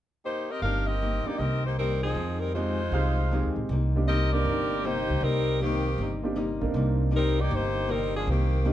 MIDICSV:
0, 0, Header, 1, 7, 480
1, 0, Start_track
1, 0, Key_signature, -3, "minor"
1, 0, Tempo, 382653
1, 790, Time_signature, 4, 2, 24, 8
1, 10948, End_track
2, 0, Start_track
2, 0, Title_t, "Trumpet section"
2, 0, Program_c, 0, 61
2, 3664, Note_on_c, 0, 72, 74
2, 3665, Note_on_c, 0, 68, 78
2, 3667, Note_on_c, 0, 63, 90
2, 3667, Note_on_c, 0, 77, 100
2, 4405, Note_off_c, 0, 68, 0
2, 4405, Note_off_c, 0, 72, 0
2, 4406, Note_off_c, 0, 63, 0
2, 4406, Note_off_c, 0, 77, 0
2, 10948, End_track
3, 0, Start_track
3, 0, Title_t, "Saxophone section"
3, 0, Program_c, 1, 65
3, 324, Note_on_c, 1, 67, 70
3, 327, Note_on_c, 1, 58, 69
3, 327, Note_on_c, 1, 72, 90
3, 328, Note_on_c, 1, 63, 77
3, 614, Note_off_c, 1, 67, 0
3, 616, Note_off_c, 1, 58, 0
3, 616, Note_off_c, 1, 63, 0
3, 616, Note_off_c, 1, 72, 0
3, 634, Note_on_c, 1, 60, 72
3, 638, Note_on_c, 1, 67, 68
3, 641, Note_on_c, 1, 70, 72
3, 644, Note_on_c, 1, 75, 81
3, 776, Note_off_c, 1, 70, 0
3, 786, Note_off_c, 1, 67, 0
3, 789, Note_on_c, 1, 77, 95
3, 791, Note_on_c, 1, 70, 80
3, 793, Note_off_c, 1, 60, 0
3, 795, Note_on_c, 1, 62, 77
3, 798, Note_off_c, 1, 75, 0
3, 801, Note_on_c, 1, 67, 78
3, 1087, Note_off_c, 1, 77, 0
3, 1088, Note_off_c, 1, 70, 0
3, 1089, Note_off_c, 1, 67, 0
3, 1090, Note_off_c, 1, 62, 0
3, 1095, Note_on_c, 1, 75, 88
3, 1101, Note_on_c, 1, 60, 80
3, 1103, Note_on_c, 1, 70, 72
3, 1104, Note_on_c, 1, 67, 80
3, 1570, Note_off_c, 1, 67, 0
3, 1583, Note_on_c, 1, 74, 82
3, 1584, Note_off_c, 1, 75, 0
3, 1585, Note_on_c, 1, 67, 69
3, 1586, Note_off_c, 1, 60, 0
3, 1587, Note_off_c, 1, 70, 0
3, 1589, Note_on_c, 1, 58, 73
3, 1591, Note_on_c, 1, 63, 73
3, 1733, Note_off_c, 1, 67, 0
3, 1745, Note_on_c, 1, 75, 94
3, 1748, Note_off_c, 1, 74, 0
3, 1748, Note_on_c, 1, 60, 81
3, 1748, Note_on_c, 1, 67, 80
3, 1751, Note_off_c, 1, 58, 0
3, 1752, Note_off_c, 1, 63, 0
3, 1754, Note_on_c, 1, 70, 80
3, 2068, Note_off_c, 1, 75, 0
3, 2070, Note_off_c, 1, 60, 0
3, 2070, Note_off_c, 1, 67, 0
3, 2073, Note_off_c, 1, 70, 0
3, 2085, Note_on_c, 1, 63, 67
3, 2088, Note_on_c, 1, 58, 71
3, 2089, Note_on_c, 1, 72, 77
3, 2094, Note_on_c, 1, 67, 65
3, 2228, Note_off_c, 1, 63, 0
3, 2230, Note_off_c, 1, 58, 0
3, 2231, Note_off_c, 1, 72, 0
3, 2233, Note_off_c, 1, 67, 0
3, 2241, Note_on_c, 1, 55, 69
3, 2242, Note_on_c, 1, 70, 82
3, 2245, Note_on_c, 1, 60, 73
3, 2249, Note_on_c, 1, 63, 72
3, 2534, Note_off_c, 1, 55, 0
3, 2535, Note_off_c, 1, 70, 0
3, 2537, Note_off_c, 1, 60, 0
3, 2538, Note_off_c, 1, 63, 0
3, 2552, Note_on_c, 1, 60, 73
3, 2557, Note_on_c, 1, 68, 84
3, 2560, Note_on_c, 1, 53, 70
3, 2565, Note_on_c, 1, 63, 76
3, 2999, Note_off_c, 1, 60, 0
3, 3002, Note_off_c, 1, 63, 0
3, 3002, Note_off_c, 1, 68, 0
3, 3003, Note_off_c, 1, 53, 0
3, 3014, Note_on_c, 1, 60, 64
3, 3017, Note_on_c, 1, 63, 65
3, 3021, Note_on_c, 1, 70, 75
3, 3026, Note_on_c, 1, 55, 62
3, 3185, Note_off_c, 1, 60, 0
3, 3186, Note_off_c, 1, 63, 0
3, 3188, Note_off_c, 1, 70, 0
3, 3191, Note_off_c, 1, 55, 0
3, 3196, Note_on_c, 1, 65, 67
3, 3197, Note_on_c, 1, 72, 85
3, 3199, Note_on_c, 1, 63, 73
3, 3202, Note_on_c, 1, 56, 70
3, 4424, Note_off_c, 1, 65, 0
3, 4425, Note_off_c, 1, 72, 0
3, 4426, Note_off_c, 1, 63, 0
3, 4427, Note_off_c, 1, 56, 0
3, 5112, Note_on_c, 1, 60, 86
3, 5121, Note_on_c, 1, 67, 88
3, 5121, Note_on_c, 1, 70, 87
3, 5124, Note_on_c, 1, 75, 98
3, 5404, Note_off_c, 1, 70, 0
3, 5406, Note_off_c, 1, 67, 0
3, 5407, Note_off_c, 1, 60, 0
3, 5416, Note_off_c, 1, 75, 0
3, 5420, Note_on_c, 1, 70, 88
3, 5421, Note_on_c, 1, 67, 90
3, 5422, Note_on_c, 1, 60, 85
3, 5431, Note_on_c, 1, 74, 106
3, 6067, Note_off_c, 1, 67, 0
3, 6067, Note_off_c, 1, 70, 0
3, 6068, Note_off_c, 1, 60, 0
3, 6073, Note_off_c, 1, 74, 0
3, 6101, Note_on_c, 1, 67, 84
3, 6103, Note_on_c, 1, 58, 79
3, 6103, Note_on_c, 1, 63, 82
3, 6103, Note_on_c, 1, 72, 93
3, 6555, Note_off_c, 1, 63, 0
3, 6567, Note_off_c, 1, 67, 0
3, 6568, Note_off_c, 1, 58, 0
3, 6568, Note_off_c, 1, 72, 0
3, 6569, Note_on_c, 1, 70, 93
3, 6570, Note_on_c, 1, 63, 79
3, 6571, Note_on_c, 1, 55, 81
3, 6572, Note_on_c, 1, 60, 77
3, 7040, Note_off_c, 1, 70, 0
3, 7041, Note_off_c, 1, 55, 0
3, 7041, Note_off_c, 1, 63, 0
3, 7042, Note_off_c, 1, 60, 0
3, 7057, Note_on_c, 1, 58, 65
3, 7059, Note_on_c, 1, 51, 66
3, 7059, Note_on_c, 1, 67, 78
3, 7062, Note_on_c, 1, 60, 67
3, 7793, Note_off_c, 1, 51, 0
3, 7793, Note_off_c, 1, 58, 0
3, 7794, Note_off_c, 1, 67, 0
3, 7795, Note_off_c, 1, 60, 0
3, 8979, Note_on_c, 1, 55, 83
3, 8984, Note_on_c, 1, 60, 82
3, 8984, Note_on_c, 1, 63, 81
3, 8985, Note_on_c, 1, 70, 98
3, 9262, Note_off_c, 1, 55, 0
3, 9265, Note_off_c, 1, 60, 0
3, 9265, Note_off_c, 1, 63, 0
3, 9265, Note_off_c, 1, 70, 0
3, 9292, Note_on_c, 1, 63, 85
3, 9295, Note_on_c, 1, 67, 84
3, 9297, Note_on_c, 1, 74, 98
3, 9298, Note_on_c, 1, 58, 82
3, 9441, Note_off_c, 1, 63, 0
3, 9442, Note_off_c, 1, 67, 0
3, 9444, Note_off_c, 1, 58, 0
3, 9444, Note_off_c, 1, 74, 0
3, 9463, Note_on_c, 1, 72, 110
3, 9468, Note_on_c, 1, 67, 92
3, 9469, Note_on_c, 1, 63, 95
3, 9472, Note_on_c, 1, 58, 93
3, 9916, Note_off_c, 1, 63, 0
3, 9924, Note_on_c, 1, 70, 93
3, 9926, Note_off_c, 1, 72, 0
3, 9927, Note_on_c, 1, 60, 82
3, 9928, Note_off_c, 1, 67, 0
3, 9929, Note_on_c, 1, 55, 79
3, 9930, Note_off_c, 1, 58, 0
3, 9931, Note_on_c, 1, 63, 82
3, 10235, Note_off_c, 1, 70, 0
3, 10237, Note_off_c, 1, 60, 0
3, 10237, Note_on_c, 1, 68, 88
3, 10238, Note_off_c, 1, 55, 0
3, 10239, Note_off_c, 1, 63, 0
3, 10241, Note_on_c, 1, 62, 73
3, 10248, Note_on_c, 1, 53, 72
3, 10252, Note_on_c, 1, 58, 71
3, 10382, Note_off_c, 1, 68, 0
3, 10384, Note_off_c, 1, 62, 0
3, 10388, Note_off_c, 1, 53, 0
3, 10390, Note_off_c, 1, 58, 0
3, 10411, Note_on_c, 1, 58, 68
3, 10415, Note_on_c, 1, 60, 71
3, 10417, Note_on_c, 1, 67, 77
3, 10418, Note_on_c, 1, 51, 65
3, 10948, Note_off_c, 1, 51, 0
3, 10948, Note_off_c, 1, 58, 0
3, 10948, Note_off_c, 1, 60, 0
3, 10948, Note_off_c, 1, 67, 0
3, 10948, End_track
4, 0, Start_track
4, 0, Title_t, "Grand piano"
4, 0, Program_c, 2, 0
4, 784, Note_on_c, 2, 58, 35
4, 789, Note_on_c, 2, 60, 34
4, 800, Note_on_c, 2, 63, 35
4, 803, Note_on_c, 2, 67, 43
4, 1524, Note_off_c, 2, 58, 0
4, 1526, Note_off_c, 2, 60, 0
4, 1532, Note_off_c, 2, 63, 0
4, 1533, Note_off_c, 2, 67, 0
4, 1585, Note_on_c, 2, 58, 48
4, 1587, Note_on_c, 2, 62, 45
4, 1600, Note_on_c, 2, 67, 53
4, 1601, Note_on_c, 2, 63, 44
4, 1733, Note_off_c, 2, 58, 0
4, 1734, Note_off_c, 2, 62, 0
4, 1741, Note_off_c, 2, 63, 0
4, 1741, Note_off_c, 2, 67, 0
4, 3186, Note_on_c, 2, 56, 56
4, 3193, Note_on_c, 2, 60, 47
4, 3201, Note_on_c, 2, 63, 53
4, 3208, Note_on_c, 2, 67, 60
4, 3477, Note_off_c, 2, 56, 0
4, 3481, Note_off_c, 2, 60, 0
4, 3485, Note_off_c, 2, 63, 0
4, 3488, Note_off_c, 2, 67, 0
4, 3663, Note_on_c, 2, 56, 43
4, 3672, Note_on_c, 2, 60, 40
4, 3676, Note_on_c, 2, 63, 43
4, 3685, Note_on_c, 2, 67, 52
4, 3956, Note_off_c, 2, 56, 0
4, 3960, Note_off_c, 2, 60, 0
4, 3962, Note_off_c, 2, 63, 0
4, 3967, Note_off_c, 2, 67, 0
4, 4160, Note_on_c, 2, 56, 51
4, 4163, Note_on_c, 2, 60, 47
4, 4171, Note_on_c, 2, 63, 44
4, 4178, Note_on_c, 2, 67, 57
4, 4637, Note_off_c, 2, 56, 0
4, 4639, Note_off_c, 2, 60, 0
4, 4642, Note_off_c, 2, 63, 0
4, 4646, Note_off_c, 2, 67, 0
4, 4963, Note_on_c, 2, 58, 59
4, 4963, Note_on_c, 2, 60, 57
4, 4972, Note_on_c, 2, 62, 55
4, 4978, Note_on_c, 2, 63, 56
4, 4978, Note_on_c, 2, 67, 65
4, 5103, Note_off_c, 2, 58, 0
4, 5103, Note_off_c, 2, 60, 0
4, 5107, Note_off_c, 2, 62, 0
4, 5110, Note_off_c, 2, 67, 0
4, 5111, Note_off_c, 2, 63, 0
4, 5427, Note_on_c, 2, 58, 53
4, 5432, Note_on_c, 2, 60, 52
4, 5432, Note_on_c, 2, 62, 55
4, 5440, Note_on_c, 2, 63, 53
4, 5445, Note_on_c, 2, 70, 65
4, 6038, Note_off_c, 2, 58, 0
4, 6041, Note_off_c, 2, 60, 0
4, 6041, Note_off_c, 2, 62, 0
4, 6045, Note_off_c, 2, 63, 0
4, 6047, Note_off_c, 2, 70, 0
4, 7815, Note_on_c, 2, 58, 57
4, 7823, Note_on_c, 2, 60, 54
4, 7823, Note_on_c, 2, 62, 54
4, 7834, Note_on_c, 2, 63, 55
4, 7843, Note_on_c, 2, 67, 64
4, 7967, Note_off_c, 2, 58, 0
4, 7971, Note_off_c, 2, 60, 0
4, 7972, Note_off_c, 2, 62, 0
4, 7977, Note_off_c, 2, 63, 0
4, 7981, Note_off_c, 2, 67, 0
4, 8292, Note_on_c, 2, 58, 61
4, 8295, Note_on_c, 2, 60, 55
4, 8298, Note_on_c, 2, 62, 55
4, 8308, Note_on_c, 2, 63, 57
4, 8316, Note_on_c, 2, 70, 67
4, 8909, Note_off_c, 2, 58, 0
4, 8911, Note_off_c, 2, 60, 0
4, 8912, Note_off_c, 2, 62, 0
4, 8917, Note_off_c, 2, 63, 0
4, 8921, Note_off_c, 2, 70, 0
4, 10841, Note_on_c, 2, 58, 55
4, 10853, Note_on_c, 2, 60, 48
4, 10855, Note_on_c, 2, 62, 51
4, 10863, Note_on_c, 2, 63, 52
4, 10868, Note_on_c, 2, 67, 58
4, 10948, Note_off_c, 2, 58, 0
4, 10948, Note_off_c, 2, 60, 0
4, 10948, Note_off_c, 2, 62, 0
4, 10948, Note_off_c, 2, 63, 0
4, 10948, Note_off_c, 2, 67, 0
4, 10948, End_track
5, 0, Start_track
5, 0, Title_t, "Hollow-body jazz guitar"
5, 0, Program_c, 3, 26
5, 807, Note_on_c, 3, 43, 45
5, 830, Note_on_c, 3, 51, 44
5, 837, Note_on_c, 3, 58, 44
5, 840, Note_on_c, 3, 60, 43
5, 1135, Note_off_c, 3, 43, 0
5, 1146, Note_off_c, 3, 51, 0
5, 1150, Note_off_c, 3, 58, 0
5, 1151, Note_off_c, 3, 60, 0
5, 1271, Note_on_c, 3, 43, 57
5, 1281, Note_on_c, 3, 51, 55
5, 1286, Note_on_c, 3, 60, 58
5, 1289, Note_on_c, 3, 58, 58
5, 1607, Note_off_c, 3, 43, 0
5, 1612, Note_off_c, 3, 51, 0
5, 1615, Note_off_c, 3, 60, 0
5, 1616, Note_off_c, 3, 58, 0
5, 1743, Note_on_c, 3, 43, 39
5, 1753, Note_on_c, 3, 51, 40
5, 1768, Note_on_c, 3, 58, 47
5, 1781, Note_on_c, 3, 60, 46
5, 2083, Note_off_c, 3, 43, 0
5, 2088, Note_off_c, 3, 51, 0
5, 2096, Note_off_c, 3, 58, 0
5, 2102, Note_off_c, 3, 60, 0
5, 2246, Note_on_c, 3, 43, 59
5, 2247, Note_on_c, 3, 51, 55
5, 2258, Note_on_c, 3, 58, 63
5, 2268, Note_on_c, 3, 60, 67
5, 2575, Note_off_c, 3, 43, 0
5, 2576, Note_off_c, 3, 51, 0
5, 2581, Note_off_c, 3, 58, 0
5, 2586, Note_off_c, 3, 60, 0
5, 2704, Note_on_c, 3, 41, 42
5, 2717, Note_on_c, 3, 51, 44
5, 2720, Note_on_c, 3, 56, 49
5, 2728, Note_on_c, 3, 60, 51
5, 3044, Note_off_c, 3, 41, 0
5, 3051, Note_off_c, 3, 51, 0
5, 3052, Note_off_c, 3, 56, 0
5, 3056, Note_off_c, 3, 60, 0
5, 3200, Note_on_c, 3, 51, 61
5, 3204, Note_on_c, 3, 41, 59
5, 3210, Note_on_c, 3, 56, 67
5, 3219, Note_on_c, 3, 60, 69
5, 3532, Note_off_c, 3, 51, 0
5, 3534, Note_off_c, 3, 41, 0
5, 3537, Note_off_c, 3, 56, 0
5, 3542, Note_off_c, 3, 60, 0
5, 3679, Note_on_c, 3, 41, 41
5, 3683, Note_on_c, 3, 51, 42
5, 3695, Note_on_c, 3, 56, 45
5, 3705, Note_on_c, 3, 60, 46
5, 4012, Note_off_c, 3, 41, 0
5, 4014, Note_off_c, 3, 51, 0
5, 4020, Note_off_c, 3, 56, 0
5, 4025, Note_off_c, 3, 60, 0
5, 4154, Note_on_c, 3, 41, 62
5, 4172, Note_on_c, 3, 51, 68
5, 4172, Note_on_c, 3, 56, 74
5, 4181, Note_on_c, 3, 60, 65
5, 4489, Note_off_c, 3, 41, 0
5, 4498, Note_off_c, 3, 51, 0
5, 4498, Note_off_c, 3, 56, 0
5, 4503, Note_off_c, 3, 60, 0
5, 4639, Note_on_c, 3, 48, 52
5, 4654, Note_on_c, 3, 55, 50
5, 4666, Note_on_c, 3, 58, 50
5, 4675, Note_on_c, 3, 63, 58
5, 4972, Note_off_c, 3, 48, 0
5, 4979, Note_off_c, 3, 55, 0
5, 4985, Note_off_c, 3, 58, 0
5, 4990, Note_off_c, 3, 63, 0
5, 5133, Note_on_c, 3, 48, 57
5, 5140, Note_on_c, 3, 55, 60
5, 5148, Note_on_c, 3, 58, 64
5, 5152, Note_on_c, 3, 63, 65
5, 5459, Note_off_c, 3, 48, 0
5, 5462, Note_off_c, 3, 55, 0
5, 5466, Note_off_c, 3, 58, 0
5, 5468, Note_off_c, 3, 63, 0
5, 5609, Note_on_c, 3, 48, 45
5, 5629, Note_on_c, 3, 55, 46
5, 5634, Note_on_c, 3, 63, 52
5, 5636, Note_on_c, 3, 58, 50
5, 5936, Note_off_c, 3, 48, 0
5, 5947, Note_off_c, 3, 55, 0
5, 5949, Note_off_c, 3, 63, 0
5, 5950, Note_off_c, 3, 58, 0
5, 6067, Note_on_c, 3, 55, 62
5, 6068, Note_on_c, 3, 48, 60
5, 6076, Note_on_c, 3, 58, 62
5, 6085, Note_on_c, 3, 63, 65
5, 6405, Note_off_c, 3, 55, 0
5, 6406, Note_off_c, 3, 48, 0
5, 6409, Note_off_c, 3, 58, 0
5, 6414, Note_off_c, 3, 63, 0
5, 6544, Note_on_c, 3, 48, 46
5, 6558, Note_on_c, 3, 55, 51
5, 6564, Note_on_c, 3, 58, 51
5, 6579, Note_on_c, 3, 63, 52
5, 6883, Note_off_c, 3, 48, 0
5, 6890, Note_off_c, 3, 55, 0
5, 6893, Note_off_c, 3, 58, 0
5, 6901, Note_off_c, 3, 63, 0
5, 7031, Note_on_c, 3, 48, 62
5, 7039, Note_on_c, 3, 55, 62
5, 7047, Note_on_c, 3, 58, 70
5, 7056, Note_on_c, 3, 63, 66
5, 7367, Note_off_c, 3, 48, 0
5, 7370, Note_off_c, 3, 55, 0
5, 7374, Note_off_c, 3, 58, 0
5, 7379, Note_off_c, 3, 63, 0
5, 7522, Note_on_c, 3, 48, 43
5, 7523, Note_on_c, 3, 55, 46
5, 7537, Note_on_c, 3, 58, 46
5, 7548, Note_on_c, 3, 63, 50
5, 7852, Note_off_c, 3, 48, 0
5, 7852, Note_off_c, 3, 55, 0
5, 7859, Note_off_c, 3, 58, 0
5, 7865, Note_off_c, 3, 63, 0
5, 7974, Note_on_c, 3, 48, 66
5, 7977, Note_on_c, 3, 55, 68
5, 7983, Note_on_c, 3, 58, 72
5, 7989, Note_on_c, 3, 63, 76
5, 8318, Note_off_c, 3, 48, 0
5, 8319, Note_off_c, 3, 55, 0
5, 8322, Note_off_c, 3, 58, 0
5, 8325, Note_off_c, 3, 63, 0
5, 8453, Note_on_c, 3, 48, 55
5, 8467, Note_on_c, 3, 55, 57
5, 8477, Note_on_c, 3, 58, 54
5, 8485, Note_on_c, 3, 63, 59
5, 8797, Note_off_c, 3, 48, 0
5, 8804, Note_off_c, 3, 55, 0
5, 8809, Note_off_c, 3, 58, 0
5, 8813, Note_off_c, 3, 63, 0
5, 8920, Note_on_c, 3, 48, 61
5, 8928, Note_on_c, 3, 55, 62
5, 8936, Note_on_c, 3, 58, 65
5, 8942, Note_on_c, 3, 63, 66
5, 9270, Note_off_c, 3, 48, 0
5, 9274, Note_off_c, 3, 55, 0
5, 9278, Note_off_c, 3, 58, 0
5, 9281, Note_off_c, 3, 63, 0
5, 9405, Note_on_c, 3, 48, 42
5, 9420, Note_on_c, 3, 55, 44
5, 9426, Note_on_c, 3, 58, 46
5, 9433, Note_on_c, 3, 63, 50
5, 9752, Note_off_c, 3, 48, 0
5, 9760, Note_off_c, 3, 55, 0
5, 9763, Note_off_c, 3, 58, 0
5, 9766, Note_off_c, 3, 63, 0
5, 9877, Note_on_c, 3, 48, 57
5, 9890, Note_on_c, 3, 55, 62
5, 9896, Note_on_c, 3, 63, 66
5, 9897, Note_on_c, 3, 58, 68
5, 10228, Note_off_c, 3, 48, 0
5, 10235, Note_off_c, 3, 55, 0
5, 10238, Note_off_c, 3, 58, 0
5, 10238, Note_off_c, 3, 63, 0
5, 10371, Note_on_c, 3, 48, 45
5, 10385, Note_on_c, 3, 55, 48
5, 10402, Note_on_c, 3, 58, 53
5, 10407, Note_on_c, 3, 63, 50
5, 10714, Note_off_c, 3, 48, 0
5, 10722, Note_off_c, 3, 55, 0
5, 10730, Note_off_c, 3, 58, 0
5, 10733, Note_off_c, 3, 63, 0
5, 10847, Note_on_c, 3, 48, 57
5, 10851, Note_on_c, 3, 55, 67
5, 10863, Note_on_c, 3, 58, 69
5, 10864, Note_on_c, 3, 63, 74
5, 10948, Note_off_c, 3, 48, 0
5, 10948, Note_off_c, 3, 55, 0
5, 10948, Note_off_c, 3, 58, 0
5, 10948, Note_off_c, 3, 63, 0
5, 10948, End_track
6, 0, Start_track
6, 0, Title_t, "Upright bass"
6, 0, Program_c, 4, 32
6, 774, Note_on_c, 4, 31, 73
6, 1533, Note_off_c, 4, 31, 0
6, 1741, Note_on_c, 4, 36, 72
6, 2660, Note_off_c, 4, 36, 0
6, 2695, Note_on_c, 4, 41, 78
6, 3617, Note_off_c, 4, 41, 0
6, 3656, Note_on_c, 4, 36, 73
6, 4260, Note_off_c, 4, 36, 0
6, 4304, Note_on_c, 4, 39, 61
6, 4458, Note_off_c, 4, 39, 0
6, 4466, Note_on_c, 4, 34, 63
6, 4618, Note_off_c, 4, 34, 0
6, 4629, Note_on_c, 4, 36, 84
6, 5543, Note_off_c, 4, 36, 0
6, 5583, Note_on_c, 4, 31, 80
6, 6336, Note_off_c, 4, 31, 0
6, 6388, Note_on_c, 4, 37, 65
6, 6525, Note_off_c, 4, 37, 0
6, 6533, Note_on_c, 4, 36, 81
6, 7453, Note_off_c, 4, 36, 0
6, 7502, Note_on_c, 4, 31, 79
6, 8255, Note_off_c, 4, 31, 0
6, 8295, Note_on_c, 4, 34, 66
6, 8447, Note_off_c, 4, 34, 0
6, 8455, Note_on_c, 4, 36, 83
6, 9373, Note_off_c, 4, 36, 0
6, 9419, Note_on_c, 4, 31, 85
6, 10335, Note_off_c, 4, 31, 0
6, 10374, Note_on_c, 4, 36, 82
6, 10948, Note_off_c, 4, 36, 0
6, 10948, End_track
7, 0, Start_track
7, 0, Title_t, "Muted upright bass strokes"
7, 1576, Note_on_c, 9, 29, 36
7, 1701, Note_off_c, 9, 29, 0
7, 10948, End_track
0, 0, End_of_file